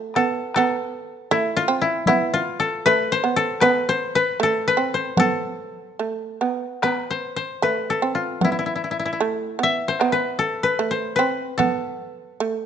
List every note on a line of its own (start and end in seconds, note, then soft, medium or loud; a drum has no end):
0.00 0.16 A3 medium
0.00 1.22 F4 medium
0.00 0.16 A4 medium
0.15 0.55 B3 medium
0.15 0.55 A4 medium
0.15 taiko rim soft
0.54 1.31 B3 medium
0.54 2.46 A4 medium
0.54 taiko rim soft
1.31 1.69 A3 medium
1.31 1.63 E4 medium
1.57 1.88 F4 medium
1.68 2.07 C4 medium
1.82 2.07 E4 medium
2.06 2.85 B3 medium
2.06 2.40 E4 medium
2.06 taiko high soft
2.34 4.52 F4 medium
2.60 3.36 A4 medium
2.86 3.23 A3 medium
2.86 3.18 B4 loud
3.12 3.67 C5 medium
3.24 3.61 B3 medium
3.36 4.43 A4 medium
3.61 4.39 B3 medium
3.61 3.95 B4 medium
3.61 taiko rim medium
3.89 4.21 C5 medium
4.15 4.67 B4 medium
4.40 4.78 A3 medium
4.40 5.19 A4 medium
4.68 5.00 B4 medium
4.77 5.17 C4 medium
4.94 6.66 C5 medium
5.17 5.99 B3 medium
5.17 7.10 A4 medium
5.17 taiko high medium
5.99 6.41 A3 medium
6.41 6.82 B3 medium
6.41 taiko rim soft
6.82 7.62 B3 medium
6.82 7.17 B4 medium
6.82 taiko rim medium
7.11 7.36 C5 medium
7.36 7.69 C5 medium
7.62 8.02 A3 medium
7.62 9.41 B4 medium
7.90 9.80 A4 medium
8.02 8.42 C4 medium
8.15 8.51 F4 medium
8.41 9.20 B3 medium
8.41 8.51 E4 medium
8.41 taiko high medium
8.52 8.58 E4 soft
8.59 8.66 E4 soft
8.66 8.75 E4 soft
8.76 8.83 E4 soft
8.84 8.91 E4 soft
8.91 8.99 E4 soft
8.99 9.05 E4 soft
9.05 9.12 E4 medium
9.13 11.39 E4 soft
9.21 9.58 A3 medium
9.59 10.00 B3 medium
9.63 11.13 E5 medium
9.88 10.18 C5 medium
10.00 10.79 B3 medium
10.00 taiko rim medium
10.12 10.63 B4 medium
10.39 11.57 A4 medium
10.63 10.97 B4 medium
10.79 11.19 A3 medium
10.91 11.22 C5 medium
11.16 11.60 C4 medium
11.16 12.66 B4 medium
11.58 12.39 B3 medium
11.58 12.66 A4 medium
11.58 taiko high medium
12.40 12.66 A3 medium